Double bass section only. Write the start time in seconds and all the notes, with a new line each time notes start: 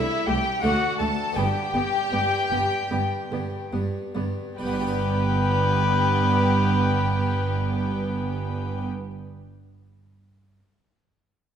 0.28 C2
0.64 D2
1.00 D2
1.37 G1
1.74 G1
2.13 G1
2.52 G1
2.91 G1
3.31 G1
3.72 G1
4.15 G1
4.58 G1